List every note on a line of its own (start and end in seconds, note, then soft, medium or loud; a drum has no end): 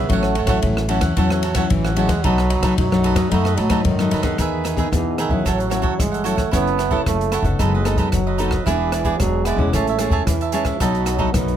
0.00 0.10 B3 loud
0.09 0.44 A1 medium
0.09 0.60 A2 medium
0.09 0.34 F#3 medium
0.09 0.89 A3 loud
0.09 0.35 C#4 medium
0.09 0.35 E4 medium
0.09 0.35 F#4 medium
0.09 0.36 A4 medium
0.09 0.37 C#5 medium
0.09 kick medium
0.09 ride soft
0.13 0.37 F#5 medium
0.23 cross-stick medium
0.35 0.46 F#4 soft
0.35 0.47 A4 soft
0.35 0.48 C#5 soft
0.35 0.48 F#5 medium
0.35 ride soft
0.46 0.59 A1 medium
0.46 0.84 F#3 medium
0.46 0.85 C#4 medium
0.46 0.85 E4 medium
0.46 0.58 F#4 medium
0.46 0.58 A4 medium
0.46 0.58 C#5 medium
0.46 0.59 F#5 medium
0.46 kick medium
0.46 cross-stick medium
0.46 ride soft
0.62 0.98 A1 medium
0.62 1.14 E3 medium
0.62 kick medium
0.62 ride medium
0.77 cross-stick medium
0.88 1.12 F#3 medium
0.88 1.12 C#4 medium
0.88 1.12 E4 medium
0.88 1.02 F#4 medium
0.88 1.02 A4 medium
0.88 1.01 C#5 medium
0.88 1.00 F#5 medium
0.88 ride soft
1.00 1.13 E2 medium
1.00 1.16 A4 soft
1.00 1.15 C#5 soft
1.00 1.15 F#5 soft
1.00 kick medium
1.00 cross-stick medium
1.00 ride soft
1.16 1.63 E2 loud
1.16 1.68 A2 medium
1.16 1.72 F#3 medium
1.16 1.42 F#3 medium
1.16 1.42 C#4 medium
1.16 1.43 E4 medium
1.16 1.29 F#4 medium
1.16 1.30 A4 medium
1.16 1.30 C#5 medium
1.16 1.30 F#5 medium
1.16 kick medium
1.16 ride soft
1.30 1.43 A4 soft
1.30 1.44 C#5 soft
1.30 1.43 F#5 medium
1.30 cross-stick medium
1.43 1.54 F#4 soft
1.43 1.55 A4 soft
1.43 1.55 C#5 medium
1.43 1.56 F#5 medium
1.43 ride medium
1.55 1.92 F#3 medium
1.55 1.92 C#4 medium
1.55 1.93 E4 medium
1.55 1.65 F#4 medium
1.55 1.66 A4 medium
1.55 1.66 C#5 medium
1.55 1.66 F#5 medium
1.55 kick medium
1.55 cross-stick medium
1.55 ride medium
1.70 2.05 A1 medium
1.70 2.21 E3 medium
1.70 1.98 E3 medium
1.70 kick medium
1.70 ride soft
1.85 1.96 A4 soft
1.85 1.97 C#5 soft
1.85 1.97 F#5 medium
1.85 cross-stick medium
1.96 2.12 F#3 medium
1.96 2.26 G#3 medium
1.96 2.13 C#4 medium
1.96 2.13 E4 medium
1.96 2.09 F#4 medium
1.96 2.10 A4 medium
1.96 2.10 C#5 medium
1.96 2.09 F#5 medium
1.96 ride medium
2.08 2.20 E2 medium
2.08 2.23 C#5 soft
2.08 2.23 F#5 soft
2.08 kick medium
2.08 cross-stick medium
2.08 ride soft
2.12 2.24 A4 soft
2.24 2.59 B1 medium
2.24 2.75 B2 medium
2.24 2.78 F#3 loud
2.24 2.50 F#3 medium
2.24 2.50 A3 medium
2.24 2.49 D#4 medium
2.24 2.50 D#4 medium
2.24 2.49 A4 medium
2.24 2.50 B4 medium
2.24 2.51 D#5 medium
2.24 kick medium
2.24 ride soft
2.38 cross-stick medium
2.50 2.63 D#4 medium
2.50 2.63 A4 soft
2.50 2.63 B4 medium
2.50 2.64 D#5 medium
2.50 ride medium
2.61 2.74 B1 medium
2.61 2.86 F#3 medium
2.61 2.86 A3 medium
2.61 2.73 D#4 medium
2.61 2.87 D#4 medium
2.61 2.73 A4 medium
2.61 2.73 B4 medium
2.61 2.74 D#5 medium
2.61 kick medium
2.61 cross-stick medium
2.61 ride soft
2.78 3.12 B1 medium
2.78 3.29 F#2 medium
2.78 3.33 F#3 medium
2.78 kick medium
2.78 ride medium
2.91 3.27 F#3 medium
2.91 3.27 A3 medium
2.91 3.28 D#4 medium
2.91 cross-stick medium
3.03 3.16 D#4 medium
3.03 3.17 A4 medium
3.03 3.16 B4 medium
3.03 3.15 D#5 medium
3.03 ride soft
3.15 3.28 F#2 medium
3.15 3.30 A4 soft
3.15 3.30 B4 soft
3.15 3.29 D#5 soft
3.15 kick medium
3.15 cross-stick medium
3.15 ride soft
3.31 3.54 F#2 loud
3.31 3.82 B2 medium
3.31 3.56 F#3 medium
3.31 3.59 A3 medium
3.31 3.57 A3 medium
3.31 3.44 D#4 medium
3.31 3.57 D#4 medium
3.31 3.44 A4 medium
3.31 3.45 B4 medium
3.31 3.45 D#5 medium
3.31 kick medium
3.31 ride soft
3.45 3.57 A4 soft
3.45 3.57 B4 soft
3.45 3.58 D#5 medium
3.45 cross-stick medium
3.57 3.82 A2 medium
3.57 3.87 F#3 medium
3.57 3.69 D#4 soft
3.57 3.70 A4 soft
3.57 3.71 B4 soft
3.57 3.71 D#5 medium
3.57 ride soft
3.70 3.93 F#3 medium
3.70 3.94 A3 medium
3.70 3.80 D#4 medium
3.70 3.94 D#4 medium
3.70 3.80 A4 medium
3.70 3.81 B4 medium
3.70 3.81 D#5 medium
3.70 kick medium
3.70 cross-stick medium
3.70 ride soft
3.85 4.36 F#2 medium
3.85 4.09 G#2 medium
3.85 4.39 D#3 medium
3.85 kick medium
3.85 ride soft
3.99 4.21 F#3 medium
3.99 4.21 A3 medium
3.99 4.21 D#4 medium
3.99 4.11 A4 soft
3.99 4.12 B4 soft
3.99 4.11 D#5 soft
3.99 cross-stick medium
4.11 4.36 F#2 medium
4.11 4.24 D#4 medium
4.11 4.24 A4 medium
4.11 4.23 B4 medium
4.11 4.22 D#5 medium
4.11 ride soft
4.23 4.73 B3 medium
4.23 4.73 D#4 medium
4.23 4.74 G#4 medium
4.23 4.38 A4 soft
4.23 4.37 B4 soft
4.23 4.37 D#5 soft
4.23 kick medium
4.23 cross-stick medium
4.23 ride soft
4.38 4.84 E2 medium
4.38 4.95 D#3 medium
4.38 4.63 D#4 medium
4.38 4.64 G#4 medium
4.38 4.65 B4 medium
4.38 4.65 E5 medium
4.38 kick medium
4.38 cross-stick medium
4.38 closed hi-hat medium
4.64 4.77 D#4 soft
4.64 4.77 G#4 soft
4.64 4.78 B4 medium
4.64 4.78 E5 soft
4.64 cross-stick medium
4.64 closed hi-hat soft
4.76 4.87 B3 medium
4.76 4.87 D#4 medium
4.76 4.87 G#4 medium
4.76 4.88 G#4 medium
4.76 4.88 B4 medium
4.76 4.88 E5 medium
4.76 kick medium
4.76 closed hi-hat soft
4.91 5.26 E2 medium
4.91 5.43 B2 soft
4.91 5.21 E3 medium
4.91 5.17 B3 soft
4.91 5.17 D#4 medium
4.91 5.17 G#4 medium
4.91 kick medium
4.91 cross-stick medium
4.91 closed hi-hat medium
5.18 5.46 D#3 medium
5.18 5.31 D#4 medium
5.18 5.32 G#4 medium
5.18 5.31 B4 medium
5.18 5.29 E5 medium
5.18 cross-stick medium
5.18 closed hi-hat soft
5.29 5.42 E2 medium
5.29 5.67 F#3 medium
5.29 5.67 C#4 medium
5.29 5.67 E4 medium
5.29 5.45 G#4 soft
5.29 5.44 B4 soft
5.29 5.44 E5 soft
5.29 kick medium
5.45 5.80 A1 loud
5.45 5.96 A2 medium
5.45 6.01 F#3 medium
5.45 5.58 F#4 medium
5.45 5.58 A4 medium
5.45 5.58 C#5 medium
5.45 5.57 F#5 medium
5.45 kick medium
5.45 cross-stick medium
5.45 closed hi-hat medium
5.58 5.69 A4 soft
5.58 5.70 C#5 soft
5.58 5.70 F#5 soft
5.58 closed hi-hat soft
5.70 6.06 F#3 medium
5.70 6.06 C#4 soft
5.70 6.06 E4 medium
5.70 5.81 F#4 soft
5.70 5.81 A4 soft
5.70 5.82 C#5 soft
5.70 5.82 F#5 soft
5.70 cross-stick medium
5.70 closed hi-hat soft
5.82 5.95 E2 medium
5.82 5.93 F#4 medium
5.82 5.93 A4 medium
5.82 5.93 C#5 medium
5.82 5.94 F#5 medium
5.82 kick medium
5.99 6.45 G1 medium
5.99 6.50 E3 medium
5.99 6.27 G#3 medium
5.99 kick medium
5.99 cross-stick medium
5.99 closed hi-hat medium
6.12 6.23 A4 soft
6.12 6.24 C#5 soft
6.12 6.24 F#5 soft
6.12 closed hi-hat soft
6.24 6.41 F#3 medium
6.24 6.52 A3 medium
6.24 6.41 C#4 medium
6.24 6.41 E4 medium
6.24 6.37 F#4 medium
6.24 6.37 A4 medium
6.24 6.36 C#5 medium
6.24 6.35 F#5 medium
6.24 closed hi-hat soft
6.36 6.51 A4 soft
6.36 6.50 C#5 soft
6.36 6.50 F#5 medium
6.36 kick medium
6.36 cross-stick medium
6.36 closed hi-hat soft
6.51 6.99 F#1 medium
6.51 7.03 F#3 medium
6.51 7.03 B3 loud
6.51 6.77 C#4 medium
6.51 6.77 E4 medium
6.51 6.78 E4 medium
6.51 6.77 A4 medium
6.51 6.78 A4 medium
6.51 6.79 C#5 medium
6.51 6.79 F#5 medium
6.51 kick medium
6.51 cross-stick medium
6.51 closed hi-hat medium
6.67 closed hi-hat soft
6.78 6.89 E4 soft
6.78 6.90 A4 soft
6.78 6.91 C#5 medium
6.78 6.91 F#5 medium
6.78 cross-stick medium
6.78 closed hi-hat soft
6.91 7.41 C#4 medium
6.91 7.01 E4 medium
6.91 7.42 E4 medium
6.91 7.01 A4 medium
6.91 7.42 A4 medium
6.91 7.01 C#5 medium
6.91 7.02 F#5 medium
6.91 kick medium
7.05 7.41 F#1 medium
7.05 7.57 C#3 medium
7.05 7.43 A3 loud
7.05 kick medium
7.05 cross-stick medium
7.05 closed hi-hat medium
7.21 closed hi-hat soft
7.32 7.45 E4 medium
7.32 7.45 A4 medium
7.32 7.44 C#5 medium
7.32 7.43 F#5 medium
7.32 cross-stick medium
7.32 closed hi-hat soft
7.42 7.56 F#1 medium
7.42 7.81 B3 medium
7.42 7.82 D#4 soft
7.42 7.82 A4 medium
7.42 7.59 A4 soft
7.42 7.58 C#5 soft
7.42 7.58 F#5 soft
7.42 kick medium
7.42 closed hi-hat soft
7.58 7.94 F#1 medium
7.58 8.11 F#3 medium
7.58 8.13 G#3 medium
7.58 7.72 D#4 medium
7.58 7.72 A4 medium
7.58 7.73 B4 medium
7.58 7.73 D#5 medium
7.58 kick medium
7.58 cross-stick medium
7.58 closed hi-hat soft
7.74 7.85 A4 soft
7.74 7.86 B4 soft
7.74 7.86 D#5 soft
7.85 8.20 B3 medium
7.85 7.96 D#4 soft
7.85 8.21 D#4 soft
7.85 7.97 A4 soft
7.85 8.21 A4 medium
7.85 7.98 B4 soft
7.85 7.98 D#5 medium
7.85 cross-stick medium
7.85 closed hi-hat soft
7.96 8.09 F#2 medium
7.96 8.08 D#4 medium
7.96 8.08 A4 medium
7.96 8.08 B4 medium
7.96 8.09 D#5 medium
7.96 kick medium
7.96 closed hi-hat soft
8.11 8.59 F#1 medium
8.11 8.67 F#3 medium
8.11 8.64 F#3 medium
8.11 kick medium
8.11 cross-stick medium
8.11 closed hi-hat medium
8.27 8.38 A4 soft
8.27 8.39 B4 soft
8.27 8.39 D#5 soft
8.38 8.55 B3 medium
8.38 8.51 D#4 medium
8.38 8.55 D#4 medium
8.38 8.52 A4 medium
8.38 8.56 A4 medium
8.38 8.52 B4 medium
8.38 8.51 D#5 medium
8.38 closed hi-hat soft
8.51 8.66 A4 soft
8.51 8.66 B4 soft
8.51 8.65 D#5 soft
8.51 kick medium
8.51 cross-stick medium
8.66 9.12 E1 medium
8.66 9.20 E3 medium
8.66 9.18 E3 medium
8.66 9.03 B3 medium
8.66 9.03 D4 medium
8.66 8.91 E4 medium
8.66 8.92 G#4 medium
8.66 9.03 G#4 medium
8.66 8.92 B4 medium
8.66 8.93 D5 medium
8.66 kick medium
8.66 cross-stick medium
8.66 closed hi-hat medium
8.92 9.03 E4 soft
8.92 9.04 G#4 soft
8.92 9.04 B4 soft
8.92 9.05 D5 soft
8.92 cross-stick medium
8.92 closed hi-hat soft
9.05 9.15 B3 medium
9.05 9.15 D4 medium
9.05 9.15 E4 medium
9.05 9.15 G#4 medium
9.05 9.15 B4 medium
9.05 9.16 D5 medium
9.05 kick medium
9.05 closed hi-hat soft
9.19 9.54 E1 medium
9.19 9.71 B2 medium
9.19 9.47 F#3 medium
9.19 9.45 B3 soft
9.19 9.46 D4 medium
9.19 9.46 G#4 medium
9.19 kick medium
9.19 cross-stick medium
9.19 closed hi-hat medium
9.45 9.72 G#3 medium
9.45 9.59 E4 medium
9.45 9.59 G#4 medium
9.45 9.59 B4 medium
9.45 9.58 D5 medium
9.45 cross-stick medium
9.45 closed hi-hat soft
9.56 9.70 E1 medium
9.56 9.95 G#3 soft
9.56 9.95 C#4 medium
9.56 9.95 E4 medium
9.56 9.73 B4 soft
9.56 9.72 D5 soft
9.56 kick medium
9.61 9.73 G#4 soft
9.72 10.08 A1 medium
9.72 10.24 A2 medium
9.72 10.23 A3 medium
9.72 9.86 G#4 medium
9.72 9.87 C#5 medium
9.72 9.87 E5 medium
9.72 9.87 A5 medium
9.72 kick medium
9.72 cross-stick medium
9.72 closed hi-hat medium
9.87 9.99 C#5 soft
9.87 9.99 E5 soft
9.87 10.00 A5 soft
9.87 closed hi-hat soft
9.99 10.34 G#3 soft
9.99 10.35 C#4 soft
9.99 10.35 E4 medium
9.99 10.10 G#4 soft
9.99 10.11 C#5 soft
9.99 10.11 E5 soft
9.99 10.12 A5 medium
9.99 cross-stick medium
9.99 closed hi-hat medium
10.10 10.23 E2 medium
10.10 10.22 G#4 medium
10.10 10.22 C#5 medium
10.10 10.22 E5 medium
10.10 10.22 A5 medium
10.10 kick medium
10.26 10.73 E2 medium
10.26 10.80 E3 medium
10.26 10.79 E3 soft
10.26 kick medium
10.26 cross-stick medium
10.26 closed hi-hat medium
10.41 10.52 C#5 soft
10.41 10.53 E5 soft
10.41 10.53 A5 soft
10.41 closed hi-hat soft
10.52 10.76 G#3 medium
10.52 10.76 C#4 medium
10.52 10.76 E4 medium
10.52 10.66 G#4 medium
10.52 10.66 C#5 medium
10.52 10.65 E5 medium
10.52 10.63 A5 medium
10.52 closed hi-hat medium
10.64 10.80 C#5 soft
10.64 10.79 E5 soft
10.64 10.78 A5 soft
10.64 kick medium
10.64 cross-stick medium
10.64 closed hi-hat soft
10.79 11.26 B1 medium
10.79 11.31 B2 soft
10.79 11.34 F#3 medium
10.79 11.17 F#3 medium
10.79 11.17 A3 medium
10.79 11.04 D#4 medium
10.79 11.17 D#4 medium
10.79 11.05 A4 medium
10.79 11.06 B4 medium
10.79 11.06 D#5 medium
10.79 kick medium
10.79 cross-stick medium
10.79 closed hi-hat medium
10.94 closed hi-hat soft
11.05 11.17 D#4 soft
11.05 11.18 A4 soft
11.05 11.18 B4 medium
11.05 11.19 D#5 medium
11.05 cross-stick medium
11.05 closed hi-hat medium
11.18 11.29 F#3 medium
11.18 11.29 A3 medium
11.18 11.29 D#4 medium
11.18 11.29 A4 medium
11.18 11.29 B4 medium
11.18 11.29 D#5 medium
11.18 kick medium
11.33 11.57 B1 medium
11.33 11.57 F#2 medium
11.33 11.57 F#3 medium
11.33 11.57 A3 medium
11.33 11.57 B3 medium
11.33 11.57 D#4 soft
11.33 kick medium
11.33 cross-stick medium
11.33 closed hi-hat medium
11.48 closed hi-hat soft